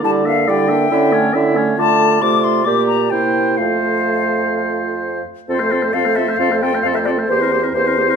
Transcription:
0.02 0.43 D3 medium
0.02 0.27 G3 soft
0.02 0.26 E4 medium
0.02 0.27 D5 medium
0.02 0.10 A5 medium
0.25 0.50 A#3 soft
0.25 0.49 D4 soft
0.25 0.49 E5 medium
0.25 0.51 F5 medium
0.47 0.86 D3 medium
0.47 0.72 G3 medium
0.47 0.70 E4 soft
0.47 0.70 D5 medium
0.47 1.58 G5 medium
0.68 0.91 A#3 medium
0.68 0.91 D4 medium
0.68 0.91 E5 medium
0.91 1.30 D3 medium
0.91 1.14 C#4 medium
0.91 1.15 E4 medium
0.91 1.14 E5 medium
1.12 1.35 A3 medium
1.12 1.36 C#4 medium
1.12 1.35 C#5 medium
1.33 1.74 D3 medium
1.33 1.57 C#4 medium
1.33 1.58 E4 medium
1.33 1.58 E5 medium
1.55 1.77 A3 medium
1.55 1.77 C#4 medium
1.55 1.78 C#5 soft
1.78 2.20 D3 medium
1.78 2.19 A3 medium
1.78 2.19 F4 medium
1.78 2.19 D5 medium
1.78 2.23 A5 medium
2.21 2.68 C3 medium
2.21 2.65 A3 medium
2.21 2.66 F4 medium
2.21 2.65 D5 medium
2.21 2.45 D6 medium
2.44 2.66 C6 medium
2.65 3.11 A#2 medium
2.65 3.10 A#3 medium
2.65 3.14 G4 medium
2.65 3.10 D5 medium
2.65 2.87 D6 medium
2.88 3.12 A#5 medium
3.10 3.58 C3 medium
3.10 3.60 A#3 soft
3.10 3.59 E4 soft
3.10 3.57 C5 soft
3.10 3.59 G5 medium
3.57 5.23 F2 soft
3.57 5.25 A3 soft
3.57 5.23 F4 soft
3.57 5.21 C5 soft
3.57 5.25 F5 medium
5.48 5.89 F2 medium
5.48 5.62 C4 soft
5.48 5.62 F4 soft
5.48 5.61 A4 soft
5.48 5.95 C5 medium
5.59 5.74 A3 soft
5.59 5.73 A4 soft
5.59 5.73 C5 soft
5.71 5.85 C4 soft
5.71 5.85 F4 soft
5.71 5.84 A4 soft
5.83 5.94 A3 soft
5.83 5.94 A4 soft
5.83 5.92 C5 soft
5.93 6.34 F2 medium
5.93 6.07 C4 soft
5.93 6.08 F4 soft
5.93 6.07 A4 soft
5.93 6.17 F5 medium
6.05 6.18 A3 soft
6.05 6.20 A4 soft
6.05 6.17 C5 soft
6.15 6.29 C4 soft
6.15 6.30 F4 soft
6.15 6.30 A4 soft
6.15 6.38 E5 medium
6.27 6.38 A3 soft
6.27 6.39 A4 soft
6.27 6.40 C5 soft
6.37 6.79 F2 medium
6.37 6.52 C4 soft
6.37 6.53 F4 soft
6.37 6.54 A4 soft
6.37 6.60 F5 medium
6.50 6.64 A3 soft
6.50 6.64 A4 soft
6.50 6.64 C5 soft
6.60 6.74 C4 soft
6.60 6.76 F4 soft
6.60 6.76 A4 soft
6.60 6.81 G5 medium
6.73 6.84 A3 soft
6.73 6.84 A4 soft
6.73 6.84 C5 soft
6.82 7.23 F2 medium
6.82 6.97 C4 soft
6.82 6.97 A4 soft
6.82 6.87 F5 medium
6.86 6.98 F4 soft
6.93 7.09 A3 soft
6.93 7.10 A4 soft
6.93 7.07 C5 soft
6.93 6.99 E5 medium
7.04 7.19 C4 soft
7.04 7.20 F4 soft
7.04 7.20 A4 soft
7.04 7.10 D5 medium
7.18 7.29 A3 soft
7.18 7.29 A4 soft
7.18 7.29 C5 soft
7.26 7.68 E2 medium
7.26 7.42 A#3 soft
7.26 7.72 C5 medium
7.26 7.43 C5 soft
7.31 7.43 G4 soft
7.41 7.54 C4 soft
7.41 7.53 E4 soft
7.41 7.53 A#4 soft
7.52 7.65 A#3 soft
7.52 7.64 G4 soft
7.52 7.64 C5 soft
7.63 7.74 C4 soft
7.63 7.74 E4 soft
7.63 7.74 A#4 soft
7.72 8.14 E2 medium
7.72 7.88 A#3 soft
7.72 7.87 G4 soft
7.72 8.16 C5 medium
7.72 7.88 C5 soft
7.85 7.99 C4 soft
7.85 7.98 E4 soft
7.85 8.00 A#4 soft
7.97 8.10 A#3 soft
7.97 8.10 G4 soft
7.97 8.11 C5 soft
8.08 8.16 C4 soft
8.08 8.16 E4 soft
8.08 8.16 A#4 soft

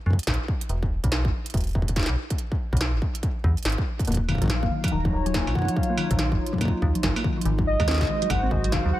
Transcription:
0.06 0.17 F#2 medium
0.06 kick soft
0.11 kick medium
0.13 kick medium
0.19 closed hi-hat medium
0.23 snare loud
0.23 closed hi-hat medium
0.27 0.38 A#1 medium
0.27 kick loud
0.27 closed hi-hat medium
0.34 closed hi-hat soft
0.48 kick loud
0.61 closed hi-hat medium
0.69 1.00 E1 loud
0.69 closed hi-hat soft
0.83 kick loud
1.04 1.26 B1 medium
1.04 kick loud
1.04 closed hi-hat medium
1.12 snare loud
1.25 1.32 G#1 medium
1.25 kick loud
1.46 closed hi-hat medium
1.50 closed hi-hat soft
1.54 1.73 E1 medium
1.54 kick loud
1.54 closed hi-hat soft
1.57 closed hi-hat soft
1.61 closed hi-hat soft
1.64 closed hi-hat soft
1.67 closed hi-hat soft
1.69 closed hi-hat soft
1.71 closed hi-hat soft
1.73 2.06 E1 medium
1.73 kick loud
1.73 closed hi-hat soft
1.82 kick medium
1.88 kick medium
1.88 closed hi-hat medium
1.96 kick loud
1.96 snare medium
1.96 closed hi-hat medium
1.99 snare medium
2.03 snare medium
2.06 2.16 B1 medium
2.06 snare loud
2.30 kick loud
2.30 closed hi-hat medium
2.38 closed hi-hat soft
2.52 kick loud
2.73 2.95 B1 medium
2.73 kick loud
2.73 closed hi-hat medium
2.81 snare loud
2.81 closed hi-hat soft
2.94 3.01 G#1 medium
3.02 kick loud
3.15 closed hi-hat medium
3.23 kick loud
3.23 closed hi-hat soft
3.44 3.55 E2 medium
3.44 kick loud
3.57 closed hi-hat soft
3.63 3.76 G#1 medium
3.63 snare loud
3.63 closed hi-hat soft
3.65 closed hi-hat soft
3.70 closed hi-hat soft
3.72 closed hi-hat medium
3.78 kick loud
3.99 kick loud
3.99 closed hi-hat soft
4.05 kick soft
4.05 closed hi-hat soft
4.07 4.38 D#1 loud
4.07 7.46 F#3 medium
4.07 4.19 A#3 medium
4.07 kick medium
4.07 closed hi-hat soft
4.12 kick medium
4.12 closed hi-hat soft
4.14 kick medium
4.14 closed hi-hat medium
4.24 9.00 D#4 medium
4.29 4.41 D#3 medium
4.29 4.93 F5 loud
4.29 kick medium
4.29 struck metal medium
4.32 kick medium
4.35 kick medium
4.38 4.64 A#1 medium
4.38 kick medium
4.42 4.49 F3 medium
4.42 kick medium
4.42 closed hi-hat medium
4.44 kick medium
4.46 kick medium
4.48 4.62 F#3 medium
4.48 kick loud
4.48 snare loud
4.48 closed hi-hat soft
4.63 4.70 F#1 medium
4.63 4.67 A#3 medium
4.63 7.45 F4 medium
4.63 kick loud
4.71 4.82 D#3 medium
4.78 7.45 C#5 loud
4.84 4.92 F3 medium
4.84 kick loud
4.84 closed hi-hat medium
4.84 struck metal medium
4.88 5.11 D#1 medium
4.88 5.27 A#5 loud
4.88 closed hi-hat soft
4.92 4.99 D#3 loud
5.05 5.09 F3 medium
5.05 kick loud
5.13 5.44 D#1 medium
5.26 5.30 F#3 loud
5.26 5.54 G#5 loud
5.26 closed hi-hat medium
5.34 5.45 A#3 medium
5.34 kick loud
5.34 snare loud
5.34 closed hi-hat soft
5.47 5.54 A#1 medium
5.47 struck metal soft
5.55 5.68 D#3 medium
5.55 5.75 F#5 medium
5.55 kick loud
5.59 kick medium
5.62 kick medium
5.65 5.75 F3 medium
5.65 kick medium
5.65 closed hi-hat medium
5.76 5.89 F#3 medium
5.76 6.57 F5 medium
5.76 kick loud
5.83 closed hi-hat soft
5.90 5.94 A#3 medium
5.98 6.09 D#3 medium
5.98 struck metal medium
6.11 6.33 A#1 medium
6.11 6.18 F3 medium
6.11 kick loud
6.11 closed hi-hat medium
6.19 6.25 D#3 loud
6.19 snare loud
6.19 closed hi-hat soft
6.32 6.39 F#1 loud
6.32 6.36 F3 medium
6.32 kick loud
6.46 closed hi-hat medium
6.53 6.57 F#3 loud
6.53 kick medium
6.58 6.72 A#3 medium
6.58 kick medium
6.58 closed hi-hat soft
6.58 struck metal medium
6.61 kick medium
6.65 kick medium
6.68 kick loud
6.82 6.93 D#2 medium
6.82 6.95 D#3 medium
6.82 kick loud
6.95 7.02 F3 medium
6.95 closed hi-hat medium
7.03 7.14 G#1 medium
7.03 7.16 F#3 medium
7.03 kick loud
7.03 snare loud
7.03 closed hi-hat soft
7.16 7.20 A#3 medium
7.16 struck metal medium
7.24 7.35 D#3 medium
7.24 kick loud
7.37 7.45 F3 medium
7.37 closed hi-hat medium
7.45 7.76 G#1 loud
7.45 7.52 D#3 loud
7.45 9.00 G#3 medium
7.45 closed hi-hat soft
7.59 7.63 F#3 medium
7.59 kick loud
7.67 9.00 C5 medium
7.67 8.32 D#5 loud
7.80 8.02 D#2 medium
7.80 7.84 G#3 loud
7.80 kick loud
7.80 struck metal medium
7.88 7.99 C4 medium
7.88 9.00 F#4 medium
7.88 snare loud
7.88 closed hi-hat soft
7.91 snare medium
7.94 snare medium
7.98 8.08 C2 medium
7.98 kick loud
7.98 snare medium
8.01 snare soft
8.03 snare soft
8.05 snare soft
8.07 8.21 D#3 medium
8.07 snare soft
8.22 8.29 F#3 medium
8.22 closed hi-hat medium
8.30 8.49 G#1 medium
8.30 8.42 G#3 medium
8.30 8.53 F#5 loud
8.30 kick loud
8.30 closed hi-hat soft
8.30 struck metal medium
8.43 8.47 C4 medium
8.51 8.82 G#1 medium
8.51 8.62 D#3 medium
8.51 8.74 D#5 loud
8.51 kick medium
8.64 8.72 F#3 medium
8.64 closed hi-hat medium
8.72 8.79 D#3 loud
8.72 8.93 F5 loud
8.72 kick loud
8.72 snare loud
8.72 closed hi-hat soft
8.85 8.92 D#2 medium
8.85 8.90 F#3 medium
8.93 9.00 F#5 loud

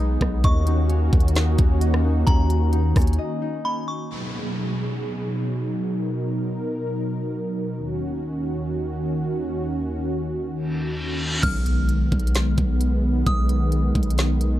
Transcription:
0.00 0.17 B1 loud
0.00 0.40 G#3 medium
0.00 0.40 B3 medium
0.00 0.40 D#4 loud
0.00 0.67 D#4 medium
0.00 2.02 G#4 medium
0.00 0.44 D#5 medium
0.00 0.40 D#6 loud
0.21 0.43 B1 loud
0.21 kick medium
0.21 cross-stick medium
0.44 1.10 D#2 loud
0.44 4.07 D#3 medium
0.44 4.07 A#3 medium
0.44 4.07 C#4 medium
0.44 4.07 F#4 medium
0.44 1.81 D#5 loud
0.44 0.87 C#6 loud
0.44 kick loud
0.44 closed hi-hat medium
0.67 1.36 D#4 medium
0.67 closed hi-hat medium
0.90 1.58 C#4 medium
0.90 closed hi-hat medium
1.13 1.57 D#2 loud
1.13 kick loud
1.13 closed hi-hat soft
1.20 closed hi-hat medium
1.28 closed hi-hat medium
1.36 2.04 D#4 medium
1.36 snare loud
1.36 closed hi-hat medium
1.58 2.25 D#2 loud
1.58 2.27 C#4 medium
1.58 kick loud
1.58 closed hi-hat medium
1.81 3.18 D#5 medium
1.81 closed hi-hat medium
1.94 cross-stick loud
2.04 2.72 D#4 medium
2.27 2.93 D#2 loud
2.27 2.95 C#4 loud
2.27 3.60 A#5 loud
2.27 kick loud
2.27 closed hi-hat medium
2.50 closed hi-hat medium
2.73 3.41 D#4 medium
2.73 closed hi-hat medium
2.96 3.18 D#2 loud
2.96 3.64 C#4 medium
2.96 kick loud
2.96 cross-stick medium
2.96 closed hi-hat medium
2.96 open hi-hat medium
3.02 closed hi-hat medium
3.07 closed hi-hat medium
3.13 closed hi-hat medium
3.18 4.97 D#5 loud
3.42 6.12 D#4 medium
3.65 6.54 C#4 medium
3.65 3.87 B5 medium
3.88 4.09 C#6 medium
4.10 7.73 B2 medium
4.10 7.73 F#3 medium
4.10 7.73 D#4 medium
4.10 5.92 G#4 medium
4.10 downlifter medium
5.94 7.75 A#4 medium
7.77 11.40 D#2 medium
7.77 11.40 D#3 medium
7.77 11.40 C#4 medium
7.77 11.40 F#4 medium
10.52 reverse cymbal medium
11.43 12.09 B1 loud
11.43 14.60 D#3 medium
11.43 14.60 G#3 medium
11.43 14.60 B3 loud
11.43 11.86 F6 loud
11.43 kick loud
11.43 closed hi-hat medium
11.43 crash medium
11.43 impact medium
11.66 closed hi-hat medium
11.89 closed hi-hat medium
12.12 12.56 B1 loud
12.12 kick medium
12.12 closed hi-hat soft
12.20 closed hi-hat medium
12.27 closed hi-hat medium
12.35 snare loud
12.35 closed hi-hat medium
12.58 13.24 B1 loud
12.58 kick loud
12.58 closed hi-hat medium
12.81 closed hi-hat medium
13.26 13.92 B1 loud
13.26 14.60 D#6 medium
13.26 kick loud
13.26 closed hi-hat medium
13.49 closed hi-hat medium
13.72 closed hi-hat medium
13.95 14.60 B1 loud
13.95 kick medium
13.95 closed hi-hat soft
14.03 closed hi-hat medium
14.10 closed hi-hat medium
14.18 snare loud
14.18 closed hi-hat medium
14.41 closed hi-hat medium

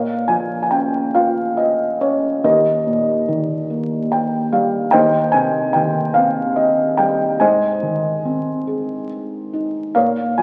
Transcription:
0.00 2.40 A#2 soft
0.00 1.11 A#4 soft
0.00 1.11 C#5 soft
0.00 0.30 F5 medium
0.28 1.96 F3 soft
0.28 0.61 G#5 medium
0.63 0.71 G#5 soft
0.71 1.99 C#4 soft
0.71 1.11 G5 medium
1.15 2.40 F4 soft
1.15 1.55 F5 medium
1.57 1.97 D#5 medium
2.01 2.42 C#4 soft
2.01 2.45 C#5 medium
2.44 4.90 D#2 soft
2.44 4.08 G4 soft
2.44 4.08 A#4 soft
2.44 4.08 D#5 medium
2.87 4.49 A#2 soft
3.28 4.90 D#3 soft
3.70 4.90 A#3 soft
4.12 4.50 G5 medium
4.52 4.92 G3 soft
4.52 4.91 F5 medium
4.91 7.36 D#2 medium
4.91 6.12 C5 medium
4.91 6.12 D#5 medium
4.91 5.35 G5 medium
5.32 6.94 C3 soft
5.32 5.75 G#5 medium
5.73 7.36 D#3 soft
5.73 6.16 G5 medium
6.14 7.37 C4 soft
6.14 6.53 F5 medium
6.56 6.99 D#5 medium
6.97 7.39 G3 soft
6.97 7.41 G5 medium
7.40 9.91 G#2 soft
7.40 9.06 C5 medium
7.40 9.06 D#5 medium
7.40 9.05 G#5 medium
7.83 9.49 D#3 soft
8.25 9.92 C4 soft
8.67 9.92 G#4 soft
9.53 9.95 D#4 soft
9.95 10.43 A#2 soft
9.95 10.43 A#4 soft
9.95 10.43 C#5 soft
9.95 10.39 F5 medium
10.38 10.43 F3 soft
10.38 10.43 G#5 medium

